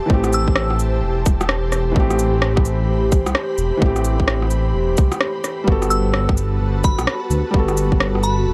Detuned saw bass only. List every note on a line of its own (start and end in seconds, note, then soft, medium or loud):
0.10 1.02 A1 loud
1.03 1.25 E1 loud
1.26 1.95 E1 loud
1.96 2.88 A1 loud
2.89 3.25 A1 loud
3.27 3.35 C2 medium
3.58 3.72 E1 loud
3.82 4.74 A1 loud
4.74 4.97 E1 loud
4.98 5.12 C2 medium
5.68 6.60 G1 loud
6.61 6.97 G1 loud
6.99 7.07 B1 medium
7.30 7.44 D2 loud
7.54 8.46 G1 loud
8.47 8.54 D1 loud